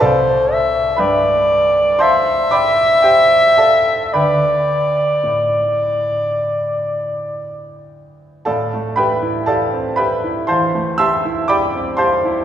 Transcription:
<<
  \new Staff \with { instrumentName = "Grand piano" } { \time 4/4 \key a \minor \tempo 4 = 58 << { <a' d'' f'' a''>4 <b' e'' g'' b''>4 <c'' f'' a'' c'''>8 <d'' g'' b'' d'''>8 <g' c'' e'' g''>8 <a' d'' f'' a''>8 | <b' e'' g'' b''>2. r4 | <a' d'' f'' a''>8 <b' e'' g'' b''>8 <a' d'' f'' a''>8 <b' e'' g'' b''>8 <c'' f'' a'' c'''>8 <e'' a'' c''' e'''>8 <d'' g'' b'' d'''>8 <c'' f'' a'' c'''>8 | } \\ { c,4 g,2. | d,4 a,2. | a,16 a16 g'16 e'16 g'16 c'16 g'16 e'16 e16 a16 g'16 e'16 g'16 c'16 g'16 e'16 | } >> }
  \new Staff \with { instrumentName = "Alto saxophone" } { \time 4/4 \key a \minor c''8 e''8 d''4 e''2 | d''2.~ d''8 r8 | r1 | }
>>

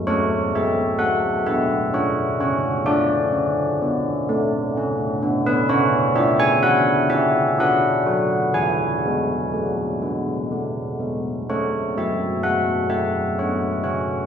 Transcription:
<<
  \new Staff \with { instrumentName = "Church bells" } { \time 3/4 \key a \major \tempo 4 = 63 << { cis''8 e''8 fis''8 e''8 cis''8 cis''8 | d''2~ d''8. b'16 | cis''8 e''16 gis''16 fis''8 e''8 fis''4 | gis''2 r4 |
cis''8 e''8 fis''8 e''8 cis''8 cis''8 | } \\ { a'2. | a'2. | a'2 b'4 | b'2. |
a'2. | } >> }
  \new Staff \with { instrumentName = "Church bells" } { \time 3/4 \key a \major a8 gis8 a8 b8 d'8 cis'8 | d'8 cis'8 b8 a8 cis'8 b8 | cis'8 d'8 e'8 cis'8 d'8 fis'8 | e8 gis8 a8 b8 a8 gis8 |
a8 fis8 gis8 a8 b8 cis'8 | }
>>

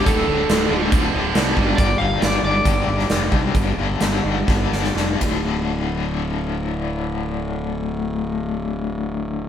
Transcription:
<<
  \new Staff \with { instrumentName = "Electric slide guitar" } { \time 4/4 \key g \dorian \tempo 4 = 126 a'2 r2 | d''8 f''8 d''8 d''2~ d''8~ | d''2. r4 | r1 |
r1 | }
  \new Staff \with { instrumentName = "Overdriven electric guitar" } { \clef bass \time 4/4 \key g \dorian <d, a, d>8 <d, a, d>8 <d, a, d>8 <d, a, d>8 <d, a, d>8 <d, a, d>8 <d, a, d>8 <g, d g>8 | <g, d g>8 <g, d g>8 <g, d g>8 <g, d g>8 <g, d g>8 <g, d g>8 <g, d g>8 <g, d g>8 | <g, d g>8 <g, d g>8 <g, d g>8 <g, d g>8 <g, d g>8 <g, d g>8 <g, d g>8 <d, a, d>8~ | <d, a, d>1~ |
<d, a, d>1 | }
  \new Staff \with { instrumentName = "Distorted electric guitar" } { \clef bass \time 4/4 \key g \dorian <d, a, d>8 <d, a, d>8 <d, a, d>8 <d, a, d>8 <d, a, d>8 <d, a, d>8 <d, a, d>8 <g, d g>8 | r1 | r1 | r1 |
r1 | }
  \new Staff \with { instrumentName = "Fingered electric bass" } { \clef bass \time 4/4 \key g \dorian d,,8 d,,8 d,,8 d,,8 d,,8 d,,8 c,8 g,,8 | g,,8 g,,8 g,,8 g,,8 g,,8 g,,8 f,,8 c,8 | g,,8 g,,8 g,,8 g,,8 g,,8 g,,8 f,,8 d,,8~ | d,,1~ |
d,,1 | }
  \new DrumStaff \with { instrumentName = "Drums" } \drummode { \time 4/4 <hh bd>4 <hh sn>4 <hh bd>4 <hh sn>8 bd8 | <hh bd>4 <hh sn>4 <hh bd>8. sn16 <hh sn>8 bd8 | <hh bd>4 <hh sn>4 <bd sn>8 sn16 sn16 sn8 <bd cymr>8 | r4 r4 r4 r4 |
r4 r4 r4 r4 | }
>>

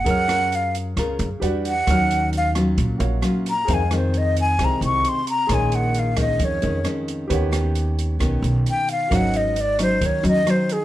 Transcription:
<<
  \new Staff \with { instrumentName = "Flute" } { \time 4/4 \key ees \dorian \tempo 4 = 133 ges''4 f''8 r2 fis''8~ | fis''4 f''8 r2 bes''8 | aes''8 c''8 ees''8 aes''8 bes''8 des'''8 c'''8 bes''8 | aes''8 ges''8 f''8 ees''8 des''4 r4 |
r2. g''8 f''8 | ges''8 ees''8 d''8 c''8 des''8 ees''8 c''8 aes'8 | }
  \new Staff \with { instrumentName = "Grand piano" } { \time 4/4 \key ees \dorian <aes' bes' des'' f'''>2. <g' b' d'' fis''>4 | <bes' des'' f'''>2~ <bes' des'' f'''>8 <ges' bes' des'' f''>4. | <aes' c'' ees'' f''>1 | <aes' des'' ees'' c'''>1 |
<g' b' des'' fis''>1 | <ges' bes' des'' ees''>1 | }
  \new Staff \with { instrumentName = "Nylon-string guitar" } { \time 4/4 \key ees \dorian << { <des' f' bes'>8 <des' f' bes'>4. <des' f' bes'>8 r8 <g d' fis'>8 r8 | <ges des'>4. <ges des' f'>4. <ges des' f'>8 r8 | <ees aes c'>8 <ees aes c'>4. <ees aes c'>4. r8 | <ees aes des'>4. <ees aes des'>4 <ees aes des'>8 <ees aes des'>4 |
<b des' g'>8 <b des' g'>4. <b des' g'>4. r8 | <ges des' ees'>4 r8 <ges des' ees'>4 <ges des' ees'>8 <ges des' ees'>8 r8 | } \\ { ges2 des4 r4 | ees2 bes,2 | f,2 c2 | bes,2 f,2 |
ees2 ees2 | aes,2 ees2 | } >> }
  \new Staff \with { instrumentName = "Upright bass" } { \clef bass \time 4/4 \key ees \dorian ges,2 des,8 ges,16 r16 e,4 | ees,2 bes,,8 bes,,8 r4 | f,2 c,8 c,8 r4 | bes,,2 f,8 f,8 r4 |
ees,2 b,,8 b,,8 r4 | aes,,2 ees,8 ees,8 r4 | }
  \new DrumStaff \with { instrumentName = "Drums" } \drummode { \time 4/4 <hh bd>8 <hh ss>8 hh8 hh8 <hh bd ss>8 hh8 hh8 hh8 | <hh bd ss>8 hh8 hh8 <hh ss>8 <hh bd>8 hh8 <hh ss>8 hh8 | <hh bd>8 <hh ss>8 hh8 hh8 <hh bd ss>8 hh8 hh8 hh8 | <hh bd ss>8 hh8 hh8 <hh bd ss>8 <hh bd>8 hh8 <hh ss>8 hh8 |
<hh bd>8 <hh ss>8 hh8 hh8 <hh bd ss>8 hh8 hh8 hh8 | <hh bd ss>8 hh8 hh8 <hh ss>8 <hh bd>8 hh8 <hh ss>8 hh8 | }
>>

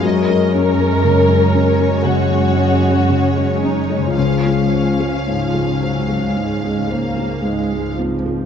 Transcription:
<<
  \new Staff \with { instrumentName = "Violin section" } { \time 4/4 \key des \major \tempo 4 = 56 ees''8 des''2.~ des''8 | f''2.~ f''8 r8 | }
  \new Staff \with { instrumentName = "Harp" } { \time 4/4 \key des \major <ges, des' ges' aes'>1 | <des f' aes' c''>1 | }
  \new Staff \with { instrumentName = "Violin section" } { \time 4/4 \key des \major bes'2 ges'4. ees'8 | des'2. r4 | }
  \new Staff \with { instrumentName = "Felt piano" } { \clef bass \time 4/4 \key des \major ges,16 aes16 des'16 aes16 des16 aes16 des'16 aes16 des16 aes16 des'16 aes16 des16 aes16 des'16 aes16 | des,16 aes16 c''16 aes16 aes,16 aes16 c''16 aes16 aes,16 aes16 c''16 aes16 aes,16 aes16 c'16 aes16 | }
  \new Staff \with { instrumentName = "Viola section" } { \clef bass \time 4/4 \key des \major << { des'1~ | des'4 f8 ges8 aes8 bes8 aes8 f8 | } \\ { aes1 | f4 r2. | } >> }
  \new Staff \with { instrumentName = "Cello section" } { \clef bass \time 4/4 \key des \major ges,1 | des,1 | }
>>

